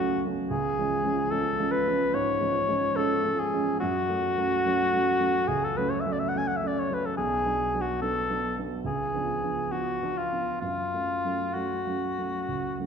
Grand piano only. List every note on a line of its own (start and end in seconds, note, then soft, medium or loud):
0.00 0.51 C#2 medium
0.00 0.25 F#3 soft
0.00 0.26 A3 soft
0.00 0.26 C#4 medium
0.25 0.49 F#3 soft
0.25 0.49 A3 soft
0.25 0.49 C#4 soft
0.51 0.76 C#2 medium
0.78 1.02 F3 soft
0.78 1.02 G#3 soft
0.78 1.02 C#4 soft
1.03 1.28 F3 soft
1.03 1.28 G#3 soft
1.03 1.29 C#4 medium
1.31 1.56 F3 soft
1.31 1.56 G#3 soft
1.31 1.56 C#4 medium
1.59 1.84 F3 soft
1.59 1.84 G#3 soft
1.59 1.85 C#4 soft
1.87 2.11 F3 soft
1.87 2.12 G#3 soft
1.87 2.12 C#4 soft
2.13 2.40 G#2 medium
2.41 2.66 F3 soft
2.41 2.66 G#3 soft
2.41 2.66 C#4 soft
2.69 2.93 F3 soft
2.69 2.93 G#3 soft
2.69 2.94 C#4 soft
2.96 3.21 F3 soft
2.96 3.22 G#3 soft
2.96 3.22 C#4 soft
3.24 3.49 F3 soft
3.24 3.50 G#3 soft
3.24 3.50 C#4 soft
3.54 3.78 F3 soft
3.54 3.79 G#3 soft
3.54 3.79 C#4 soft
3.82 4.08 F#2 medium
4.09 4.34 F#3 soft
4.09 4.34 A3 soft
4.09 4.34 C#4 soft
4.37 4.62 F#3 soft
4.37 4.62 A3 soft
4.37 4.62 C#4 soft
4.66 4.90 F#3 soft
4.66 4.90 A3 soft
4.66 4.90 C#4 soft
4.93 5.18 F#3 soft
4.93 5.17 A3 soft
4.93 5.18 C#4 soft
5.20 5.45 F#3 soft
5.20 5.45 A3 soft
5.20 5.46 C#4 soft
5.48 5.75 C#2 medium
5.78 6.02 F#3 soft
5.78 6.02 A3 soft
5.78 6.02 C#4 soft
6.06 6.30 F#3 soft
6.06 6.31 A3 soft
6.06 6.31 C#4 soft
6.35 6.59 F#3 soft
6.35 6.59 A3 soft
6.35 6.59 C#4 soft
6.62 6.86 F#3 soft
6.62 6.87 A3 soft
6.62 6.87 C#4 soft
6.90 7.14 F#3 soft
6.90 7.15 A3 soft
6.90 7.15 C#4 soft
7.19 7.45 B1 medium
7.46 7.70 F#3 soft
7.46 7.70 B3 soft
7.46 7.70 D4 soft
7.74 7.99 F#3 soft
7.74 7.98 B3 soft
7.74 7.99 D4 soft
8.02 8.26 F#3 soft
8.02 8.27 B3 soft
8.02 8.27 D4 soft
8.30 8.54 F#3 soft
8.30 8.54 B3 soft
8.30 8.55 D4 soft
8.58 8.83 F#3 soft
8.58 8.83 B3 soft
8.58 8.83 D4 soft
8.84 9.12 C#2 medium
9.13 9.39 F3 soft
9.13 9.40 B3 soft
9.13 9.40 D4 soft
9.44 9.69 F3 soft
9.44 9.69 B3 soft
9.44 9.69 D4 soft
9.71 9.98 F3 soft
9.71 9.98 B3 soft
9.71 9.98 D4 soft
10.02 10.28 F3 soft
10.02 10.29 B3 soft
10.02 10.29 D4 soft
10.32 10.59 F3 soft
10.32 10.59 B3 soft
10.32 10.59 D4 soft
10.62 10.91 F#2 soft
10.94 11.21 F#3 soft
10.94 11.21 A3 soft
10.94 11.21 C#4 soft
11.25 11.52 F#3 soft
11.25 11.53 A3 soft
11.25 11.53 C#4 soft
11.55 11.83 F#3 soft
11.55 11.83 A3 soft
11.55 11.83 C#4 soft
11.87 12.14 F#3 soft
11.87 12.15 A3 soft
11.87 12.15 C#4 soft
12.18 12.45 F#3 soft
12.18 12.46 A3 soft
12.18 12.46 C#4 soft
12.48 12.78 C#2 soft
12.80 12.86 F#3 soft
12.80 12.86 A3 soft
12.80 12.86 C#4 soft